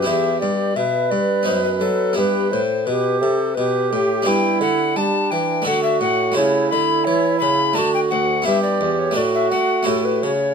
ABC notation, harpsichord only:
X:1
M:3/4
L:1/8
Q:1/4=86
K:Em
V:1 name="Harpsichord"
[B,EG]4 [B,^DF]2 | [B,E]6 | [K:D] [B,DG]4 [A,DA]2 | [A,EG]4 [A,DF]2 |
[B,EG]2 [A,DF]2 [A,EG]2 |]
V:2 name="Harpsichord" clef=bass
E,, G,, B,, G,, F,, F, | G,, A,, B,, C, B,, A,, | [K:D] G,, D, G, E, D, A,, | C, D, E, C, D, D,, |
G,, E,, A,, A, A,, C, |]